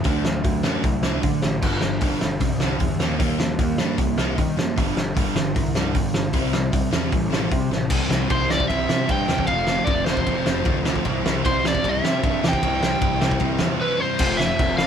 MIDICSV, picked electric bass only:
0, 0, Header, 1, 2, 480
1, 0, Start_track
1, 0, Tempo, 393185
1, 62, Time_signature, 4, 2, 24, 8
1, 18152, End_track
2, 0, Start_track
2, 0, Title_t, "Picked electric bass"
2, 0, Program_c, 0, 34
2, 62, Note_on_c, 0, 38, 108
2, 498, Note_off_c, 0, 38, 0
2, 539, Note_on_c, 0, 38, 86
2, 759, Note_off_c, 0, 38, 0
2, 785, Note_on_c, 0, 42, 86
2, 1003, Note_off_c, 0, 42, 0
2, 1021, Note_on_c, 0, 36, 94
2, 1459, Note_off_c, 0, 36, 0
2, 1508, Note_on_c, 0, 50, 90
2, 1725, Note_off_c, 0, 50, 0
2, 1736, Note_on_c, 0, 33, 87
2, 1959, Note_off_c, 0, 33, 0
2, 1985, Note_on_c, 0, 31, 105
2, 2204, Note_off_c, 0, 31, 0
2, 2221, Note_on_c, 0, 31, 92
2, 2442, Note_off_c, 0, 31, 0
2, 2458, Note_on_c, 0, 31, 80
2, 2681, Note_off_c, 0, 31, 0
2, 2699, Note_on_c, 0, 31, 90
2, 2921, Note_off_c, 0, 31, 0
2, 2938, Note_on_c, 0, 36, 91
2, 3379, Note_off_c, 0, 36, 0
2, 3424, Note_on_c, 0, 40, 98
2, 3654, Note_off_c, 0, 40, 0
2, 3654, Note_on_c, 0, 39, 83
2, 3879, Note_off_c, 0, 39, 0
2, 3900, Note_on_c, 0, 39, 101
2, 4340, Note_off_c, 0, 39, 0
2, 4378, Note_on_c, 0, 39, 93
2, 4601, Note_off_c, 0, 39, 0
2, 4609, Note_on_c, 0, 43, 84
2, 4837, Note_off_c, 0, 43, 0
2, 4860, Note_on_c, 0, 36, 99
2, 5300, Note_off_c, 0, 36, 0
2, 5354, Note_on_c, 0, 51, 90
2, 5570, Note_off_c, 0, 51, 0
2, 5577, Note_on_c, 0, 42, 81
2, 5801, Note_off_c, 0, 42, 0
2, 5830, Note_on_c, 0, 31, 102
2, 6048, Note_off_c, 0, 31, 0
2, 6055, Note_on_c, 0, 31, 91
2, 6279, Note_off_c, 0, 31, 0
2, 6303, Note_on_c, 0, 31, 93
2, 6524, Note_off_c, 0, 31, 0
2, 6536, Note_on_c, 0, 31, 94
2, 6760, Note_off_c, 0, 31, 0
2, 6791, Note_on_c, 0, 36, 95
2, 7225, Note_off_c, 0, 36, 0
2, 7266, Note_on_c, 0, 31, 97
2, 7485, Note_off_c, 0, 31, 0
2, 7502, Note_on_c, 0, 31, 76
2, 7732, Note_off_c, 0, 31, 0
2, 7732, Note_on_c, 0, 36, 107
2, 8175, Note_off_c, 0, 36, 0
2, 8213, Note_on_c, 0, 36, 82
2, 8438, Note_off_c, 0, 36, 0
2, 8455, Note_on_c, 0, 40, 90
2, 8678, Note_off_c, 0, 40, 0
2, 8702, Note_on_c, 0, 33, 89
2, 9139, Note_off_c, 0, 33, 0
2, 9179, Note_on_c, 0, 48, 91
2, 9395, Note_off_c, 0, 48, 0
2, 9402, Note_on_c, 0, 33, 89
2, 9631, Note_off_c, 0, 33, 0
2, 9648, Note_on_c, 0, 36, 94
2, 9846, Note_off_c, 0, 36, 0
2, 9891, Note_on_c, 0, 36, 94
2, 10088, Note_off_c, 0, 36, 0
2, 10137, Note_on_c, 0, 36, 86
2, 10522, Note_off_c, 0, 36, 0
2, 10621, Note_on_c, 0, 36, 93
2, 10814, Note_off_c, 0, 36, 0
2, 10862, Note_on_c, 0, 48, 96
2, 11054, Note_off_c, 0, 48, 0
2, 11101, Note_on_c, 0, 43, 94
2, 11293, Note_off_c, 0, 43, 0
2, 11335, Note_on_c, 0, 40, 76
2, 11529, Note_off_c, 0, 40, 0
2, 11565, Note_on_c, 0, 29, 103
2, 11954, Note_off_c, 0, 29, 0
2, 12049, Note_on_c, 0, 29, 92
2, 12245, Note_off_c, 0, 29, 0
2, 12304, Note_on_c, 0, 29, 94
2, 12494, Note_off_c, 0, 29, 0
2, 12538, Note_on_c, 0, 29, 89
2, 12731, Note_off_c, 0, 29, 0
2, 12781, Note_on_c, 0, 29, 94
2, 12972, Note_off_c, 0, 29, 0
2, 13011, Note_on_c, 0, 38, 98
2, 13397, Note_off_c, 0, 38, 0
2, 13497, Note_on_c, 0, 36, 100
2, 13689, Note_off_c, 0, 36, 0
2, 13741, Note_on_c, 0, 36, 102
2, 13932, Note_off_c, 0, 36, 0
2, 13981, Note_on_c, 0, 36, 84
2, 14363, Note_off_c, 0, 36, 0
2, 14457, Note_on_c, 0, 36, 95
2, 14649, Note_off_c, 0, 36, 0
2, 14697, Note_on_c, 0, 48, 101
2, 14889, Note_off_c, 0, 48, 0
2, 14930, Note_on_c, 0, 43, 93
2, 15125, Note_off_c, 0, 43, 0
2, 15185, Note_on_c, 0, 40, 89
2, 15374, Note_off_c, 0, 40, 0
2, 15414, Note_on_c, 0, 36, 102
2, 15798, Note_off_c, 0, 36, 0
2, 15897, Note_on_c, 0, 36, 88
2, 16089, Note_off_c, 0, 36, 0
2, 16138, Note_on_c, 0, 36, 89
2, 16329, Note_off_c, 0, 36, 0
2, 16368, Note_on_c, 0, 36, 96
2, 16563, Note_off_c, 0, 36, 0
2, 16618, Note_on_c, 0, 40, 102
2, 16809, Note_off_c, 0, 40, 0
2, 17331, Note_on_c, 0, 29, 109
2, 17696, Note_off_c, 0, 29, 0
2, 17813, Note_on_c, 0, 29, 84
2, 18152, Note_off_c, 0, 29, 0
2, 18152, End_track
0, 0, End_of_file